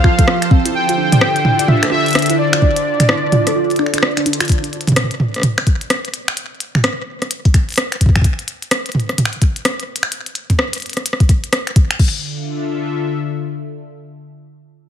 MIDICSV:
0, 0, Header, 1, 5, 480
1, 0, Start_track
1, 0, Key_signature, -1, "minor"
1, 0, Tempo, 468750
1, 762, Time_signature, 4, 2, 24, 8
1, 15247, End_track
2, 0, Start_track
2, 0, Title_t, "Soft synth lead"
2, 0, Program_c, 0, 80
2, 0, Note_on_c, 0, 77, 106
2, 522, Note_off_c, 0, 77, 0
2, 763, Note_on_c, 0, 79, 116
2, 1722, Note_on_c, 0, 76, 109
2, 1737, Note_off_c, 0, 79, 0
2, 1956, Note_off_c, 0, 76, 0
2, 1963, Note_on_c, 0, 76, 106
2, 2409, Note_off_c, 0, 76, 0
2, 2443, Note_on_c, 0, 74, 99
2, 4322, Note_off_c, 0, 74, 0
2, 15247, End_track
3, 0, Start_track
3, 0, Title_t, "Analog synth pad"
3, 0, Program_c, 1, 89
3, 0, Note_on_c, 1, 53, 75
3, 0, Note_on_c, 1, 65, 73
3, 0, Note_on_c, 1, 67, 85
3, 0, Note_on_c, 1, 69, 89
3, 0, Note_on_c, 1, 72, 82
3, 762, Note_off_c, 1, 53, 0
3, 763, Note_on_c, 1, 50, 79
3, 997, Note_on_c, 1, 62, 83
3, 2152, Note_off_c, 1, 67, 0
3, 4602, Note_off_c, 1, 62, 0
3, 4602, Note_off_c, 1, 65, 0
3, 4602, Note_off_c, 1, 69, 0
3, 4602, Note_off_c, 1, 72, 0
3, 4603, Note_off_c, 1, 50, 0
3, 12282, Note_on_c, 1, 50, 76
3, 12372, Note_on_c, 1, 62, 76
3, 12449, Note_on_c, 1, 65, 80
3, 12505, Note_on_c, 1, 69, 80
3, 12583, Note_on_c, 1, 76, 75
3, 14161, Note_off_c, 1, 50, 0
3, 14161, Note_off_c, 1, 65, 0
3, 14162, Note_off_c, 1, 62, 0
3, 14162, Note_off_c, 1, 69, 0
3, 14162, Note_off_c, 1, 76, 0
3, 15247, End_track
4, 0, Start_track
4, 0, Title_t, "Synth pluck"
4, 0, Program_c, 2, 84
4, 42, Note_on_c, 2, 65, 105
4, 183, Note_off_c, 2, 65, 0
4, 190, Note_on_c, 2, 69, 78
4, 233, Note_off_c, 2, 69, 0
4, 281, Note_on_c, 2, 65, 103
4, 423, Note_off_c, 2, 65, 0
4, 522, Note_on_c, 2, 60, 77
4, 664, Note_off_c, 2, 60, 0
4, 671, Note_on_c, 2, 64, 78
4, 742, Note_off_c, 2, 64, 0
4, 911, Note_on_c, 2, 65, 78
4, 953, Note_off_c, 2, 65, 0
4, 1002, Note_on_c, 2, 62, 81
4, 1118, Note_off_c, 2, 62, 0
4, 1150, Note_on_c, 2, 74, 79
4, 1222, Note_off_c, 2, 74, 0
4, 1482, Note_on_c, 2, 64, 80
4, 1551, Note_off_c, 2, 64, 0
4, 1631, Note_on_c, 2, 74, 107
4, 1702, Note_off_c, 2, 74, 0
4, 1722, Note_on_c, 2, 65, 104
4, 1863, Note_off_c, 2, 65, 0
4, 1871, Note_on_c, 2, 69, 75
4, 1913, Note_off_c, 2, 69, 0
4, 1962, Note_on_c, 2, 65, 104
4, 2104, Note_off_c, 2, 65, 0
4, 2203, Note_on_c, 2, 62, 89
4, 2344, Note_off_c, 2, 62, 0
4, 2351, Note_on_c, 2, 64, 78
4, 2422, Note_off_c, 2, 64, 0
4, 2591, Note_on_c, 2, 65, 82
4, 2634, Note_off_c, 2, 65, 0
4, 2683, Note_on_c, 2, 62, 86
4, 2798, Note_off_c, 2, 62, 0
4, 2831, Note_on_c, 2, 74, 76
4, 2902, Note_off_c, 2, 74, 0
4, 3162, Note_on_c, 2, 64, 83
4, 3232, Note_off_c, 2, 64, 0
4, 3311, Note_on_c, 2, 74, 101
4, 3382, Note_off_c, 2, 74, 0
4, 3403, Note_on_c, 2, 65, 107
4, 3544, Note_off_c, 2, 65, 0
4, 3552, Note_on_c, 2, 69, 83
4, 3594, Note_off_c, 2, 69, 0
4, 3642, Note_on_c, 2, 65, 107
4, 3784, Note_off_c, 2, 65, 0
4, 3882, Note_on_c, 2, 62, 109
4, 3998, Note_off_c, 2, 62, 0
4, 4031, Note_on_c, 2, 62, 77
4, 4102, Note_off_c, 2, 62, 0
4, 4122, Note_on_c, 2, 74, 89
4, 4238, Note_off_c, 2, 74, 0
4, 4271, Note_on_c, 2, 62, 77
4, 4350, Note_off_c, 2, 62, 0
4, 4362, Note_on_c, 2, 62, 75
4, 4432, Note_off_c, 2, 62, 0
4, 4511, Note_on_c, 2, 65, 81
4, 4598, Note_off_c, 2, 65, 0
4, 15247, End_track
5, 0, Start_track
5, 0, Title_t, "Drums"
5, 42, Note_on_c, 9, 26, 37
5, 42, Note_on_c, 9, 36, 83
5, 145, Note_off_c, 9, 26, 0
5, 145, Note_off_c, 9, 36, 0
5, 191, Note_on_c, 9, 36, 85
5, 191, Note_on_c, 9, 42, 66
5, 282, Note_on_c, 9, 37, 113
5, 293, Note_off_c, 9, 42, 0
5, 294, Note_off_c, 9, 36, 0
5, 385, Note_off_c, 9, 37, 0
5, 431, Note_on_c, 9, 26, 38
5, 431, Note_on_c, 9, 42, 51
5, 522, Note_on_c, 9, 36, 121
5, 534, Note_off_c, 9, 26, 0
5, 534, Note_off_c, 9, 42, 0
5, 625, Note_off_c, 9, 36, 0
5, 671, Note_on_c, 9, 42, 64
5, 774, Note_off_c, 9, 42, 0
5, 911, Note_on_c, 9, 42, 55
5, 1014, Note_off_c, 9, 42, 0
5, 1152, Note_on_c, 9, 42, 64
5, 1152, Note_on_c, 9, 45, 100
5, 1243, Note_on_c, 9, 37, 123
5, 1254, Note_off_c, 9, 42, 0
5, 1254, Note_off_c, 9, 45, 0
5, 1345, Note_off_c, 9, 37, 0
5, 1392, Note_on_c, 9, 42, 37
5, 1483, Note_on_c, 9, 45, 88
5, 1494, Note_off_c, 9, 42, 0
5, 1585, Note_off_c, 9, 45, 0
5, 1632, Note_on_c, 9, 42, 63
5, 1723, Note_on_c, 9, 45, 90
5, 1734, Note_off_c, 9, 42, 0
5, 1825, Note_off_c, 9, 45, 0
5, 1871, Note_on_c, 9, 26, 82
5, 1871, Note_on_c, 9, 37, 27
5, 1871, Note_on_c, 9, 42, 37
5, 1890, Note_off_c, 9, 37, 0
5, 1890, Note_on_c, 9, 37, 34
5, 1908, Note_off_c, 9, 37, 0
5, 1908, Note_on_c, 9, 37, 38
5, 1926, Note_off_c, 9, 37, 0
5, 1926, Note_on_c, 9, 37, 44
5, 1944, Note_off_c, 9, 37, 0
5, 1944, Note_on_c, 9, 37, 50
5, 1974, Note_off_c, 9, 26, 0
5, 1974, Note_off_c, 9, 42, 0
5, 2046, Note_off_c, 9, 37, 0
5, 2111, Note_on_c, 9, 42, 30
5, 2134, Note_off_c, 9, 42, 0
5, 2134, Note_on_c, 9, 42, 34
5, 2157, Note_off_c, 9, 42, 0
5, 2157, Note_on_c, 9, 42, 39
5, 2180, Note_off_c, 9, 42, 0
5, 2180, Note_on_c, 9, 42, 44
5, 2203, Note_off_c, 9, 42, 0
5, 2203, Note_on_c, 9, 37, 112
5, 2203, Note_on_c, 9, 42, 44
5, 2240, Note_off_c, 9, 42, 0
5, 2240, Note_on_c, 9, 42, 48
5, 2277, Note_off_c, 9, 42, 0
5, 2277, Note_on_c, 9, 42, 50
5, 2305, Note_off_c, 9, 37, 0
5, 2314, Note_off_c, 9, 42, 0
5, 2314, Note_on_c, 9, 42, 55
5, 2351, Note_off_c, 9, 42, 0
5, 2351, Note_on_c, 9, 42, 54
5, 2454, Note_off_c, 9, 42, 0
5, 2591, Note_on_c, 9, 26, 81
5, 2591, Note_on_c, 9, 42, 68
5, 2683, Note_on_c, 9, 36, 84
5, 2694, Note_off_c, 9, 26, 0
5, 2694, Note_off_c, 9, 42, 0
5, 2785, Note_off_c, 9, 36, 0
5, 2831, Note_on_c, 9, 42, 57
5, 2934, Note_off_c, 9, 42, 0
5, 3071, Note_on_c, 9, 26, 39
5, 3071, Note_on_c, 9, 42, 68
5, 3071, Note_on_c, 9, 45, 98
5, 3162, Note_on_c, 9, 37, 121
5, 3174, Note_off_c, 9, 26, 0
5, 3174, Note_off_c, 9, 42, 0
5, 3174, Note_off_c, 9, 45, 0
5, 3265, Note_off_c, 9, 37, 0
5, 3402, Note_on_c, 9, 42, 37
5, 3402, Note_on_c, 9, 45, 89
5, 3505, Note_off_c, 9, 42, 0
5, 3505, Note_off_c, 9, 45, 0
5, 3551, Note_on_c, 9, 37, 60
5, 3551, Note_on_c, 9, 42, 66
5, 3654, Note_off_c, 9, 37, 0
5, 3654, Note_off_c, 9, 42, 0
5, 3791, Note_on_c, 9, 42, 17
5, 3802, Note_off_c, 9, 42, 0
5, 3802, Note_on_c, 9, 42, 23
5, 3852, Note_off_c, 9, 42, 0
5, 3852, Note_on_c, 9, 42, 30
5, 3882, Note_on_c, 9, 26, 18
5, 3954, Note_off_c, 9, 42, 0
5, 3957, Note_off_c, 9, 26, 0
5, 3957, Note_on_c, 9, 26, 22
5, 4031, Note_off_c, 9, 26, 0
5, 4031, Note_on_c, 9, 26, 28
5, 4031, Note_on_c, 9, 42, 69
5, 4077, Note_off_c, 9, 26, 0
5, 4077, Note_on_c, 9, 26, 32
5, 4122, Note_on_c, 9, 37, 116
5, 4133, Note_off_c, 9, 42, 0
5, 4179, Note_off_c, 9, 26, 0
5, 4225, Note_off_c, 9, 37, 0
5, 4271, Note_on_c, 9, 26, 40
5, 4271, Note_on_c, 9, 42, 57
5, 4362, Note_off_c, 9, 42, 0
5, 4362, Note_on_c, 9, 42, 59
5, 4374, Note_off_c, 9, 26, 0
5, 4436, Note_off_c, 9, 42, 0
5, 4436, Note_on_c, 9, 42, 69
5, 4511, Note_off_c, 9, 42, 0
5, 4511, Note_on_c, 9, 26, 88
5, 4511, Note_on_c, 9, 42, 78
5, 4557, Note_off_c, 9, 42, 0
5, 4557, Note_on_c, 9, 42, 38
5, 4587, Note_off_c, 9, 42, 0
5, 4587, Note_on_c, 9, 42, 54
5, 4602, Note_off_c, 9, 42, 0
5, 4602, Note_on_c, 9, 36, 78
5, 4602, Note_on_c, 9, 42, 88
5, 4613, Note_off_c, 9, 26, 0
5, 4627, Note_off_c, 9, 42, 0
5, 4627, Note_on_c, 9, 42, 62
5, 4705, Note_off_c, 9, 36, 0
5, 4730, Note_off_c, 9, 42, 0
5, 4751, Note_on_c, 9, 42, 43
5, 4843, Note_off_c, 9, 42, 0
5, 4843, Note_on_c, 9, 42, 31
5, 4923, Note_off_c, 9, 42, 0
5, 4923, Note_on_c, 9, 42, 42
5, 4991, Note_off_c, 9, 42, 0
5, 4991, Note_on_c, 9, 42, 41
5, 4991, Note_on_c, 9, 45, 87
5, 5003, Note_off_c, 9, 42, 0
5, 5003, Note_on_c, 9, 42, 53
5, 5037, Note_off_c, 9, 45, 0
5, 5037, Note_on_c, 9, 45, 71
5, 5083, Note_off_c, 9, 42, 0
5, 5083, Note_off_c, 9, 45, 0
5, 5083, Note_on_c, 9, 37, 126
5, 5083, Note_on_c, 9, 42, 101
5, 5083, Note_on_c, 9, 45, 60
5, 5157, Note_off_c, 9, 45, 0
5, 5157, Note_on_c, 9, 45, 50
5, 5185, Note_off_c, 9, 37, 0
5, 5185, Note_off_c, 9, 42, 0
5, 5232, Note_on_c, 9, 42, 41
5, 5259, Note_off_c, 9, 45, 0
5, 5323, Note_on_c, 9, 45, 80
5, 5334, Note_off_c, 9, 42, 0
5, 5425, Note_off_c, 9, 45, 0
5, 5472, Note_on_c, 9, 42, 41
5, 5490, Note_on_c, 9, 37, 33
5, 5508, Note_off_c, 9, 37, 0
5, 5508, Note_on_c, 9, 37, 39
5, 5526, Note_off_c, 9, 37, 0
5, 5526, Note_on_c, 9, 37, 43
5, 5545, Note_off_c, 9, 37, 0
5, 5545, Note_on_c, 9, 37, 52
5, 5563, Note_off_c, 9, 42, 0
5, 5563, Note_on_c, 9, 42, 92
5, 5563, Note_on_c, 9, 45, 82
5, 5647, Note_off_c, 9, 37, 0
5, 5665, Note_off_c, 9, 42, 0
5, 5665, Note_off_c, 9, 45, 0
5, 5712, Note_on_c, 9, 26, 80
5, 5712, Note_on_c, 9, 37, 60
5, 5712, Note_on_c, 9, 42, 39
5, 5802, Note_on_c, 9, 36, 86
5, 5803, Note_off_c, 9, 42, 0
5, 5803, Note_on_c, 9, 42, 66
5, 5814, Note_off_c, 9, 26, 0
5, 5814, Note_off_c, 9, 37, 0
5, 5905, Note_off_c, 9, 36, 0
5, 5905, Note_off_c, 9, 42, 0
5, 5952, Note_on_c, 9, 42, 41
5, 6043, Note_off_c, 9, 42, 0
5, 6043, Note_on_c, 9, 37, 115
5, 6043, Note_on_c, 9, 42, 90
5, 6145, Note_off_c, 9, 37, 0
5, 6145, Note_off_c, 9, 42, 0
5, 6192, Note_on_c, 9, 42, 41
5, 6283, Note_off_c, 9, 42, 0
5, 6283, Note_on_c, 9, 42, 71
5, 6385, Note_off_c, 9, 42, 0
5, 6432, Note_on_c, 9, 26, 81
5, 6523, Note_on_c, 9, 42, 91
5, 6534, Note_off_c, 9, 26, 0
5, 6625, Note_off_c, 9, 42, 0
5, 6763, Note_on_c, 9, 42, 69
5, 6865, Note_off_c, 9, 42, 0
5, 6912, Note_on_c, 9, 26, 36
5, 6912, Note_on_c, 9, 45, 88
5, 7003, Note_on_c, 9, 37, 124
5, 7003, Note_on_c, 9, 42, 99
5, 7014, Note_off_c, 9, 26, 0
5, 7014, Note_off_c, 9, 45, 0
5, 7105, Note_off_c, 9, 37, 0
5, 7105, Note_off_c, 9, 42, 0
5, 7392, Note_on_c, 9, 37, 61
5, 7392, Note_on_c, 9, 42, 41
5, 7483, Note_off_c, 9, 42, 0
5, 7483, Note_on_c, 9, 42, 98
5, 7494, Note_off_c, 9, 37, 0
5, 7585, Note_off_c, 9, 42, 0
5, 7631, Note_on_c, 9, 36, 86
5, 7632, Note_on_c, 9, 42, 41
5, 7722, Note_off_c, 9, 36, 0
5, 7722, Note_on_c, 9, 36, 87
5, 7723, Note_off_c, 9, 42, 0
5, 7723, Note_on_c, 9, 26, 36
5, 7723, Note_on_c, 9, 42, 69
5, 7825, Note_off_c, 9, 26, 0
5, 7825, Note_off_c, 9, 36, 0
5, 7825, Note_off_c, 9, 42, 0
5, 7872, Note_on_c, 9, 42, 19
5, 7890, Note_off_c, 9, 42, 0
5, 7890, Note_on_c, 9, 42, 23
5, 7908, Note_off_c, 9, 42, 0
5, 7908, Note_on_c, 9, 42, 27
5, 7926, Note_off_c, 9, 42, 0
5, 7926, Note_on_c, 9, 42, 31
5, 7944, Note_off_c, 9, 42, 0
5, 7944, Note_on_c, 9, 42, 36
5, 7962, Note_off_c, 9, 42, 0
5, 7962, Note_on_c, 9, 37, 112
5, 7962, Note_on_c, 9, 42, 92
5, 8065, Note_off_c, 9, 37, 0
5, 8065, Note_off_c, 9, 42, 0
5, 8111, Note_on_c, 9, 26, 38
5, 8111, Note_on_c, 9, 42, 42
5, 8202, Note_off_c, 9, 42, 0
5, 8202, Note_on_c, 9, 36, 57
5, 8202, Note_on_c, 9, 42, 69
5, 8214, Note_off_c, 9, 26, 0
5, 8252, Note_off_c, 9, 36, 0
5, 8252, Note_on_c, 9, 36, 66
5, 8283, Note_off_c, 9, 36, 0
5, 8283, Note_on_c, 9, 36, 75
5, 8305, Note_off_c, 9, 42, 0
5, 8351, Note_off_c, 9, 36, 0
5, 8351, Note_on_c, 9, 26, 81
5, 8351, Note_on_c, 9, 36, 86
5, 8351, Note_on_c, 9, 42, 41
5, 8363, Note_off_c, 9, 36, 0
5, 8363, Note_on_c, 9, 36, 92
5, 8412, Note_off_c, 9, 36, 0
5, 8412, Note_on_c, 9, 36, 100
5, 8442, Note_off_c, 9, 36, 0
5, 8442, Note_off_c, 9, 42, 0
5, 8442, Note_on_c, 9, 36, 86
5, 8442, Note_on_c, 9, 42, 88
5, 8454, Note_off_c, 9, 26, 0
5, 8545, Note_off_c, 9, 36, 0
5, 8545, Note_off_c, 9, 42, 0
5, 8591, Note_on_c, 9, 42, 40
5, 8682, Note_off_c, 9, 42, 0
5, 8682, Note_on_c, 9, 42, 69
5, 8784, Note_off_c, 9, 42, 0
5, 8831, Note_on_c, 9, 42, 41
5, 8922, Note_off_c, 9, 42, 0
5, 8922, Note_on_c, 9, 37, 127
5, 8922, Note_on_c, 9, 42, 100
5, 9024, Note_off_c, 9, 37, 0
5, 9024, Note_off_c, 9, 42, 0
5, 9070, Note_on_c, 9, 42, 39
5, 9132, Note_off_c, 9, 42, 0
5, 9132, Note_on_c, 9, 42, 32
5, 9162, Note_on_c, 9, 45, 78
5, 9212, Note_off_c, 9, 42, 0
5, 9212, Note_on_c, 9, 42, 25
5, 9264, Note_off_c, 9, 45, 0
5, 9311, Note_off_c, 9, 42, 0
5, 9311, Note_on_c, 9, 37, 63
5, 9311, Note_on_c, 9, 42, 39
5, 9402, Note_off_c, 9, 42, 0
5, 9402, Note_on_c, 9, 42, 90
5, 9402, Note_on_c, 9, 45, 81
5, 9413, Note_off_c, 9, 37, 0
5, 9477, Note_on_c, 9, 26, 77
5, 9505, Note_off_c, 9, 42, 0
5, 9505, Note_off_c, 9, 45, 0
5, 9551, Note_on_c, 9, 42, 39
5, 9579, Note_off_c, 9, 26, 0
5, 9642, Note_off_c, 9, 42, 0
5, 9642, Note_on_c, 9, 36, 88
5, 9642, Note_on_c, 9, 42, 65
5, 9744, Note_off_c, 9, 42, 0
5, 9745, Note_off_c, 9, 36, 0
5, 9791, Note_on_c, 9, 42, 41
5, 9882, Note_off_c, 9, 42, 0
5, 9882, Note_on_c, 9, 37, 119
5, 9882, Note_on_c, 9, 42, 91
5, 9985, Note_off_c, 9, 37, 0
5, 9985, Note_off_c, 9, 42, 0
5, 10031, Note_on_c, 9, 42, 40
5, 10134, Note_off_c, 9, 42, 0
5, 10197, Note_on_c, 9, 42, 69
5, 10271, Note_on_c, 9, 26, 78
5, 10299, Note_off_c, 9, 42, 0
5, 10362, Note_on_c, 9, 42, 85
5, 10373, Note_off_c, 9, 26, 0
5, 10464, Note_off_c, 9, 42, 0
5, 10511, Note_on_c, 9, 42, 41
5, 10602, Note_off_c, 9, 42, 0
5, 10602, Note_on_c, 9, 42, 67
5, 10704, Note_off_c, 9, 42, 0
5, 10751, Note_on_c, 9, 42, 40
5, 10751, Note_on_c, 9, 45, 90
5, 10842, Note_on_c, 9, 37, 124
5, 10853, Note_off_c, 9, 42, 0
5, 10853, Note_off_c, 9, 45, 0
5, 10944, Note_off_c, 9, 37, 0
5, 10991, Note_on_c, 9, 42, 93
5, 11013, Note_off_c, 9, 42, 0
5, 11013, Note_on_c, 9, 42, 20
5, 11036, Note_off_c, 9, 42, 0
5, 11036, Note_on_c, 9, 42, 22
5, 11059, Note_off_c, 9, 42, 0
5, 11059, Note_on_c, 9, 42, 25
5, 11082, Note_off_c, 9, 42, 0
5, 11082, Note_on_c, 9, 42, 35
5, 11120, Note_off_c, 9, 42, 0
5, 11120, Note_on_c, 9, 42, 29
5, 11157, Note_off_c, 9, 42, 0
5, 11157, Note_on_c, 9, 42, 33
5, 11194, Note_off_c, 9, 42, 0
5, 11194, Note_on_c, 9, 42, 35
5, 11231, Note_off_c, 9, 42, 0
5, 11231, Note_on_c, 9, 37, 60
5, 11231, Note_on_c, 9, 42, 38
5, 11322, Note_off_c, 9, 42, 0
5, 11322, Note_on_c, 9, 42, 91
5, 11334, Note_off_c, 9, 37, 0
5, 11397, Note_on_c, 9, 37, 64
5, 11425, Note_off_c, 9, 42, 0
5, 11471, Note_on_c, 9, 36, 85
5, 11471, Note_on_c, 9, 42, 39
5, 11499, Note_off_c, 9, 37, 0
5, 11562, Note_off_c, 9, 36, 0
5, 11562, Note_off_c, 9, 42, 0
5, 11562, Note_on_c, 9, 36, 88
5, 11562, Note_on_c, 9, 42, 64
5, 11664, Note_off_c, 9, 36, 0
5, 11665, Note_off_c, 9, 42, 0
5, 11711, Note_on_c, 9, 42, 38
5, 11802, Note_off_c, 9, 42, 0
5, 11802, Note_on_c, 9, 37, 116
5, 11802, Note_on_c, 9, 42, 88
5, 11905, Note_off_c, 9, 37, 0
5, 11905, Note_off_c, 9, 42, 0
5, 11951, Note_on_c, 9, 26, 34
5, 11951, Note_on_c, 9, 42, 38
5, 12042, Note_off_c, 9, 42, 0
5, 12042, Note_on_c, 9, 36, 126
5, 12042, Note_on_c, 9, 42, 67
5, 12054, Note_off_c, 9, 26, 0
5, 12144, Note_off_c, 9, 36, 0
5, 12145, Note_off_c, 9, 42, 0
5, 12191, Note_on_c, 9, 26, 77
5, 12191, Note_on_c, 9, 42, 41
5, 12282, Note_on_c, 9, 36, 114
5, 12283, Note_on_c, 9, 49, 84
5, 12294, Note_off_c, 9, 26, 0
5, 12294, Note_off_c, 9, 42, 0
5, 12384, Note_off_c, 9, 36, 0
5, 12385, Note_off_c, 9, 49, 0
5, 15247, End_track
0, 0, End_of_file